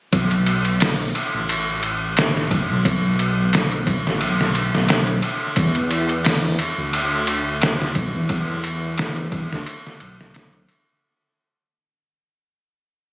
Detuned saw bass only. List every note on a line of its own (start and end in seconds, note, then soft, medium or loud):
0.13 1.12 B1 loud
1.35 2.49 A1 medium
2.51 2.67 F#1 medium
2.70 4.03 B1 medium
4.05 4.23 A1 medium
4.22 4.70 B1 medium
4.74 5.21 B1 loud
5.57 6.57 E2 loud
6.78 7.93 D2 medium
7.96 8.12 B1 medium
8.15 9.48 E2 medium
9.52 9.65 D2 medium
10.01 10.66 B1 loud